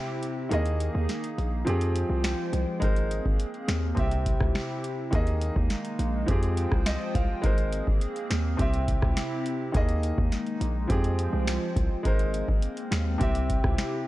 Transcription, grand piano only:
Already playing: C3 C4 G4 E5
0.49 D#3 A#3 G#4
0.53 D#5
1.65 F3 C4 G4
1.69 G#4
2.80 G#3 D#4 A#4
2.84 C5
3.95 C3 C4 G4
3.99 E5
5.11 D#3 A#3 G#4
5.15 D#5
6.26 F3 C4 G4
6.30 G#4
6.86 D#5
7.15 F5
7.42 G#3 D#4 A#4
7.46 C5
8.57 C3 C4 G4
8.61 E5
9.72 D#3 A#3 G#4
9.76 D#5
10.88 F3 C4 G4
10.92 G#4
12.03 G#3 D#4 A#4
12.07 C5
13.18 C3 C4 G4
13.22 E5

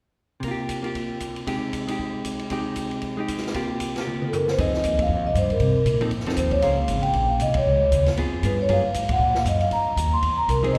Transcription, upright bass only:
4.58 F2
4.72 muted upright bass stroke
4.84 D#2
5.09 F2
5.16 D#2
5.26 C2
5.35 G2
5.60 C3
5.85 A#2
6.11 F2
6.37 D#2
6.62 C#2
6.88 G#1
7.14 A#1
7.40 C2
7.66 C#2
7.92 D#2
8.17 F2
8.43 G2
8.69 F#2
8.95 G#2
9.19 A#2
9.45 F#2
9.71 G2
9.96 D#2
10.23 E2
10.48 C2
10.74 F1

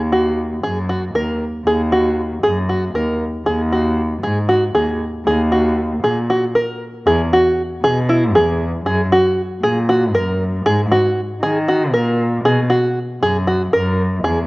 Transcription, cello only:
Already playing: D#2
0.64 F#2
1.14 D#2
1.66 D#2
2.44 F#2
2.95 D#2
3.46 D#2
4.23 G#2
4.75 D#2
5.26 D#2
6.03 A#2
7.06 E2
7.84 B2
8.35 E2
8.85 F#2
9.62 A#2
10.14 F#2
10.66 G#2
11.42 D#3
11.93 A#2
12.44 B2
13.22 F#2
13.73 F#2
14.24 E2

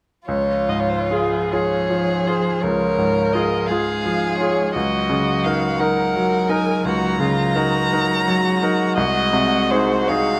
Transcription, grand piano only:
0.28 C#2
0.69 G#2
1.11 F4 G#4
1.53 F4 G#4
1.90 F3
2.27 F4 G#4
2.63 C#2
2.98 G#2
3.35 F4 G#4
3.71 F4 G#4
4.05 F3
4.40 F4 G#4
4.76 C#2
5.09 C#3
5.45 D#4 A#4
5.79 D#4 A#4
6.16 F#3
6.49 D#4 A#4
6.85 C#2
7.20 C#3
7.55 D#4 A#4
7.93 D#4 A#4
8.28 F#3
8.62 D#4 A#4
8.97 C2
9.33 C3
9.72 D#4 G#4
10.09 D#4 G#4

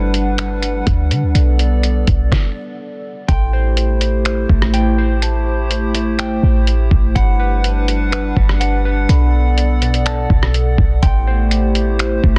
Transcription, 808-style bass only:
Already playing: G1
0.87 D2
1.11 D3
1.23 D2
1.35 B1
2.08 B1
3.29 A1
4.49 A1
6.43 A1
6.91 A1
7.16 G1
8.37 G1
9.09 B1
10.30 B1
10.78 B1
11.03 A1
12.24 A1

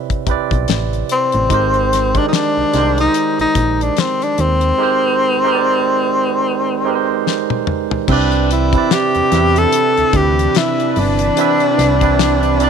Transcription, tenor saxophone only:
1.12 C4
2.18 D4
2.28 D#4
2.35 D4
3.01 D#4
3.41 D#4
3.82 D4
4.00 C4
4.23 D4
4.41 C4
8.11 D4
8.53 E4
8.93 G4
9.58 A4
10.17 G4
10.58 E4
10.92 E4
10.99 D4

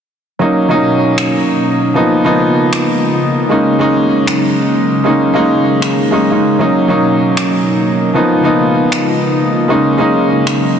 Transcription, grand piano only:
0.39 F#3 A#3 C#4 D#4
0.69 F#3 A#3 C#4 D#4
1.94 F3 A#3 B3 D#4
2.24 F3 A#3 B3 D#4
3.49 G#3 A#3 C#4 D#4
3.79 G#3 A#3 C#4 D#4
5.04 G#3 A#3 C#4 D#4
5.34 G#3 A#3 C#4 D#4
6.11 G#3 A#3 C#4 D#4
6.30 G#3 A#3 C#4 D#4
6.59 F#3 A#3 C#4 D#4
6.88 F#3 A#3 C#4 D#4
8.14 F3 A#3 B3 D#4
8.43 F3 A#3 B3 D#4
9.68 G#3 A#3 C#4 D#4
9.98 G#3 A#3 C#4 D#4

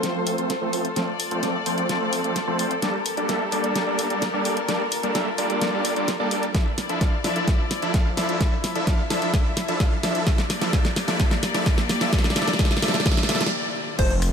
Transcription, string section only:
Already playing: F4 A4 C5
0.96 D5
2.82 G4 A#4
4.68 F4
6.54 F3 E4 D5
8.41 E5
10.27 A#3 G4 D5
13.99 C3 A3 F4

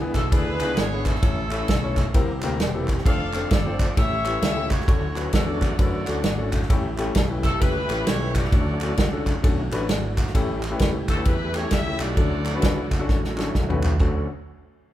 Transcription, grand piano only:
Already playing: E3
0.01 B3 D4 E4 G#4 B4
0.31 B3 D4 E4 G#4 D5
0.61 B3 D4 E4 G#4 B4
0.93 B3 D4 E4 G#4 C#5
1.23 A2 A3 C#4 E4 A4 C#5
1.51 A3 C#4 E4 A4 E5
1.83 A3 C#4 E4 A4 C#5
2.14 C3 A#3 C4 E4 G4 A#4
2.43 A#3 C4 E4 G4 A#4
2.74 A#3 C4 E4 G4 A4
3.06 A3 C4 D4 F4 A4
3.35 A3 C4 D4 F4 A4
3.66 A3 C4 D4 F4 C5
3.97 A2 A3 C#4 E4 G4 A4
4.26 A3 C#4 E4 G4 B4
4.56 A3 C#4 E4 G4 A4
4.87 D3 A3 C#4 D4 F#4 A4
5.16 A3 C#4 D4 F#4 B4
5.47 A3 C#4 D4 F#4 A4
5.79 A3 C#4 D4 F#4 B4
6.08 A3 C#4 D4 F#4 A4
6.38 A3 C#4 D4 F#4 A4
6.69 A2 A3 C#4 E4 G4 A4
6.98 A3 C#4 E4 G4 A4
7.30 A3 C#4 E4 G4 B4
7.61 A3 C#4 E4 G4 B4
7.90 A3 C#4 E4 G4 A4
8.21 A3 C#4 E4 G4 B4
8.53 D3 A3 C#4 D4 F#4 A4
8.82 A3 C#4 D4 F#4 A4
9.12 A3 C#4 D4 F#4 A4
9.43 A3 C#4 D4 F#4 A4
9.72 A3 C#4 D4 F#4 B4
9.89 D5
10.18 F#5
10.35 A2 A3 C#4 E4 G4 A4
10.71 A3 C#4 E4 G4 B4
11.17 A3 C#4 E4 G4 B4
11.54 A3 C#4 E4 G4 A4
11.86 A3 C#4 E4 G4 A4
12.17 D3 A3 C#4 D4 F#4 A4
12.54 A3 C#4 D4 F#4 B4
12.99 A3 C#4 D4 F#4 A4
13.38 A3 C#4 D4 F#4 A4
13.68 A3 C#4 D4 F#4 B4
14.00 D2 C#4 D4 F#4 A4

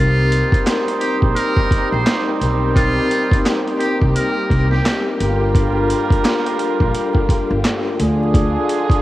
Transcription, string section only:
Already playing: G3 A#3 C4 D#4 G4
5.21 D3 F4
7.98 F3 G#3 F4 G#4

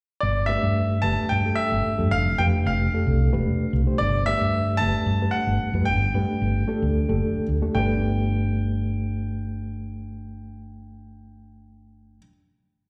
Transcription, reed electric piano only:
0.48 A3 D4 G4 B4
1.04 A3 D4 G4 B4
1.45 A3 D4 G4 A4
1.98 A3 D4 G4 A4
2.39 A3 D4 G4 B4
2.94 A3 D4 G4 A4
3.33 A3 D4 G4 B4
3.87 A3 D4 G4 C5
4.27 A3 D4 G4 B4
4.81 A3 D4 G4 B4
5.21 A3 D4 G4 B4
5.75 A3 D4 G4 B4
6.14 A3 D4 G4 B4
6.68 A3 D4 G4 A4
7.08 A3 D4 G4 A4
7.62 A3 D4 G4 A4
7.76 A3 D4 G4 B4

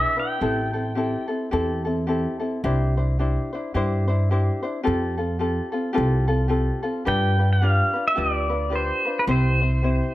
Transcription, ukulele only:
Already playing: D4 E4 G#4 B4
0.16 D4 E4 B4
0.40 C4 E4 G4 A4
0.73 C4 E4 A4
0.95 C4 E4 G4 A4
1.28 C4 E4 A4
1.51 C4 E4 G4 A4
1.85 C4 E4 A4
2.07 C4 E4 G4 A4
2.40 C4 E4 A4
2.64 D4 E4 G4 C5
2.97 D4 E4 C5
3.19 D4 E4 G4 C5
3.53 D4 E4 C5
3.74 D4 E4 G4 C5
4.08 D4 E4 C5
4.31 D4 E4 G4 C5
4.63 D4 E4 C5
4.83 C4 F4 G4 A4
5.18 C4 F4 A4
5.39 C4 F4 G4 A4
5.72 C4 F4 A4
5.93 C4 F4 G4 A4
6.28 C4 F4 A4
6.48 C4 F4 G4 A4
6.83 C4 F4 A4
7.05 D4 F4 G4 B4
7.39 D4 F4 B4
7.62 D4 F4 G4 B4
7.93 D4 F4 B4
8.15 D4 F4 G4 B4
8.49 D4 F4 B4
8.70 D4 F4 G4 B4
9.05 D4 F4 B4
9.28 C4 E4 G4 C5
9.61 C4 E4 C5
9.82 C4 E4 G4 C5

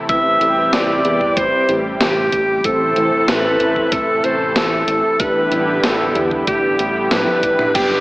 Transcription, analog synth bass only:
0.09 A1
0.41 A1
0.73 A1
1.05 E2
1.37 A1
1.69 A1
2.00 A1
2.33 A1
2.64 A1
2.96 A1
3.28 A1
3.60 A1
3.92 A1
4.24 A1
4.56 A1
4.88 A1
5.20 A1
5.51 A1
5.83 A1
6.15 E2
6.47 A1
6.79 A1
7.11 A2
7.43 A1
7.75 G1

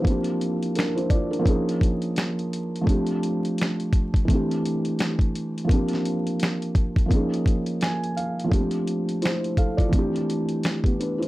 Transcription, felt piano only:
Already playing: E4 C5
0.02 F3 A#3
0.06 C4 D4
0.11 G4
0.76 D4 A#4
0.95 E4 C5
1.10 F4 D5
1.30 D4 A#4
1.39 F3 A#3
1.44 C#4 D#4
1.49 G#4
2.81 F3 A3
2.86 C4 D4
2.91 G4
4.25 E3 A3
4.30 C4 D4
4.35 G4
5.64 F3 A#3
5.70 C4 D4
5.75 G4
7.06 F3 A#3
7.11 C#4 D#4
7.15 G#4
7.82 G#5
8.17 F5
8.44 F3 A3
8.49 A#3 D4
8.54 C4 G4
9.22 E4 C5
9.58 A4 F5
9.77 F4 D5
9.89 E3 A3
9.94 C4 D4
9.99 G4
10.84 B3 G4
11.00 D4 B4
11.18 E4 C5

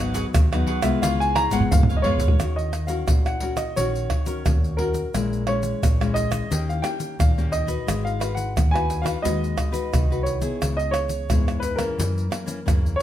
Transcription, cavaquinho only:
Already playing: F#4
0.00 G#4 B4 F#5
0.14 F#4 G#4 B4 F#5
0.52 G#4 B4 F#5
0.67 F#4 G#4 B4 F#5
1.03 F4 B4 C#5 F5
1.35 F4 B4 C#5 F5
1.52 F4 B4 C#5 F5
1.89 B4 C#5 F5
2.04 F4 B4 C#5 F5
2.20 B4 C#5 F5

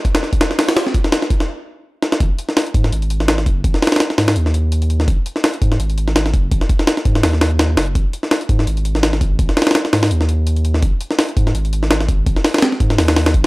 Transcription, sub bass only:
2.21 G#1
2.75 G#2
2.92 G#1
3.46 F#1
3.64 G#1
4.18 G#2
4.36 D#2
5.08 G#1
5.62 G#2
5.80 G#1
6.34 F#1
6.52 G#1
7.05 G#2
7.23 D#2
7.77 F#1
7.95 G#1
8.49 G#2
8.67 G#1
9.21 G#1
9.39 G#1
9.93 G#2
10.11 D#2
10.83 G#1
11.37 G#2
11.55 G#1
12.09 G#1
12.27 G#1
12.80 G#2
12.98 D#2
13.34 G#1

